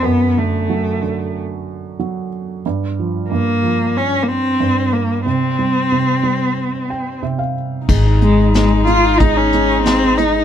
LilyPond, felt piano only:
<<
  \new Staff \with { instrumentName = "Felt piano" } { \time 4/4 \key aes \major \tempo 4 = 92 r1 | r1 | r2 r8 g''8 e''16 f''8. | r1 | }
  \new Staff \with { instrumentName = "Felt piano" } { \clef bass \time 4/4 \key aes \major fis,8 d8 fis8 d4. fis4 | g,8 f8 g,8 f4. g,4 | c8 g8 c8 g4. c4 | aes16 ees'16 aes16 ees'16 aes16 ees'16 aes16 ees'16 aes16 ees'16 aes16 ees'16 aes16 ees'16 aes16 ees'16 | }
>>